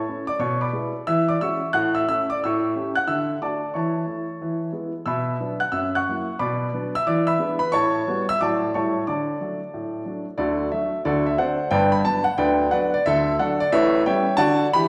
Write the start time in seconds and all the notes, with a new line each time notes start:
Already playing: C#5 A5 C#6
0.08 A3 C#4 E4
0.27 D5 D6
0.39 B2 C#5 C#6
0.61 D5 B5 D6
0.73 G#3 B3 E4
1.07 E3 E5 E6
1.28 D5 D6
1.41 G#3 C#4 F#4 E5 C#6 E6
1.73 A2 F#5 F#6
1.95 E5 E6
2.09 A3 C#4 E4 E5 E6
2.30 D5 D6
2.44 A2 E5 C#6 E6
2.75 A3 C#4 G4
2.96 F#5 F#6
3.08 D3 E5 E6
3.42 A3 D4 F#4 D5 A5 D6
3.74 E3 C#5 A5 C#6
4.06 A3 E4
4.42 E3
4.73 G#3 B3 E4
5.06 B2 E5 B5 E6
5.40 F#3 B3 D4
5.60 F#5 F#6
5.72 F#2 E5 E6
5.95 F#5 C#6 F#6
6.09 F#3 A#3 E4
6.39 B2 D5 B5 D6
6.73 F#3 B3 D4
6.95 E5 E6
7.07 E3 D5 D6
7.27 E5 B5 E6
7.39 G#3 B3 D4
7.59 B4 B5
7.72 A2 C#5 A5 C#6
8.07 G3 B3 F#4
8.29 E5 E6
8.41 A2 F#3 A3 F#4 D5 A5 D6
8.74 A2 G3 A3 E4 C#5 A5 C#6
9.07 D3 D5 A5 D6
9.41 F#3 A3 D4
9.74 A2
10.05 F#3 A3 D4
10.38 D2 D3 F#4 A4 D5
10.72 F#3 A3 D4 E5
11.05 D2 D3 F#4 A4 D5
11.26 E5
11.38 A3 C4 D4 C5 D5 F#5
11.71 G1 G2 B4 D5 G5
11.92 B5
12.05 F#3 B3 D4 A5
12.24 F#5
12.38 D2 D3 B4 D5 G5
12.71 F#3 B3 D4 B4 D5 F#5
12.94 D5
13.06 D2 D3 A4 E5
13.39 F#3 A3 D4 A4 D5 F#5
13.60 D5
13.72 A1 A2 B4 C#5 E5
14.06 G3 B3 C#4 C#5 E5 G5
14.37 D3 F#4 D5 F#5 A5
14.73 E3 G4 B5